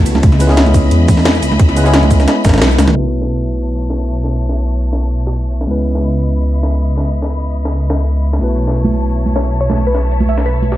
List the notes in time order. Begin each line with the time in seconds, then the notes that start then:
Already playing: A3 B3 E4 F#4 A4 C#5 E5 A5
0.06 C#2, closed hi-hat, ride, cabasa
0.15 snare, high conga
0.23 D#5 E5 B5, kick, closed hi-hat
0.32 C#2, snare, closed hi-hat
0.39 G#3 B3 C#4 E4 B4, closed hi-hat, ride, cabasa
0.47 G#3 B3 C#4 E4, snare
0.52 G#4
0.57 snare, closed hi-hat
0.66 closed hi-hat, high conga
0.74 kick, snare, closed hi-hat, ride, cabasa
0.91 E2, closed hi-hat
1.08 E2, kick, closed hi-hat, open hi-hat, ride, high conga, cabasa
1.17 snare
1.25 snare, closed hi-hat
1.35 cabasa
1.42 C#2, closed hi-hat, ride, cabasa
1.52 snare, high conga
1.59 kick, closed hi-hat
1.69 C#2, snare, closed hi-hat
1.76 G#3 B3 C#4 E4 B4, closed hi-hat, ride, cabasa
1.84 G#3 B3 C#4 E4, snare, cabasa
1.88 G#4
1.94 snare, closed hi-hat
2.03 closed hi-hat, high conga
2.11 kick, closed hi-hat, open hi-hat, ride, cabasa
2.20 snare, cabasa
2.28 snare, closed hi-hat
2.45 G#1, kick, snare, closed hi-hat, ride, high conga, cabasa
2.49 snare, closed hi-hat
2.54 snare, closed hi-hat
2.58 snare, closed hi-hat
2.62 B1, snare, closed hi-hat
2.71 cabasa
2.79 C#2, snare, closed hi-hat, high tom, ride, cabasa
2.88 snare, closed hi-hat, mid tom, high conga
2.94 B1 A3 B3 E4 F#4 C#5 E5 A5, closed hi-hat
2.98 B4
3.13 closed hi-hat
3.22 snare
3.30 closed hi-hat
3.47 closed hi-hat
3.64 closed hi-hat
3.81 open hi-hat
3.90 snare
3.98 closed hi-hat
4.15 closed hi-hat
4.24 snare
4.32 closed hi-hat
4.41 closed hi-hat
4.49 snare, closed hi-hat
4.66 closed hi-hat
4.76 closed hi-hat
4.83 closed hi-hat
4.93 snare
5.01 closed hi-hat
5.18 closed hi-hat
5.27 snare
5.35 closed hi-hat
5.52 closed hi-hat
5.61 snare
5.67 C#2 G#3 B3 C#4 E4 D#5 E5 B5, closed hi-hat
5.71 B4
5.78 closed hi-hat
5.86 closed hi-hat
5.95 snare
6.03 closed hi-hat
6.20 closed hi-hat
6.37 closed hi-hat
6.54 open hi-hat, cabasa
6.63 snare
6.71 closed hi-hat
6.88 closed hi-hat
6.97 snare
7.05 closed hi-hat
7.14 closed hi-hat
7.22 snare, closed hi-hat
7.39 closed hi-hat
7.48 closed hi-hat
7.56 closed hi-hat
7.65 snare
7.73 closed hi-hat
7.90 snare, closed hi-hat
8.07 closed hi-hat
8.24 closed hi-hat, cabasa
8.33 snare
8.39 B1 A3 B3 E4 F#4 C#5 E5 A5, closed hi-hat
8.44 B4
8.50 closed hi-hat
8.58 closed hi-hat
8.67 snare
8.75 closed hi-hat
8.85 high conga
8.92 closed hi-hat
9.09 closed hi-hat
9.26 open hi-hat, high conga, cabasa
9.36 C#5, snare
9.44 closed hi-hat
9.61 C#5, closed hi-hat
9.70 snare, high conga
9.77 closed hi-hat
9.87 B4, closed hi-hat
9.95 snare, closed hi-hat
10.11 closed hi-hat
10.20 closed hi-hat, high conga
10.29 E5, closed hi-hat
10.38 snare
10.46 B4, closed hi-hat
10.62 closed hi-hat, high conga, cabasa
10.72 snare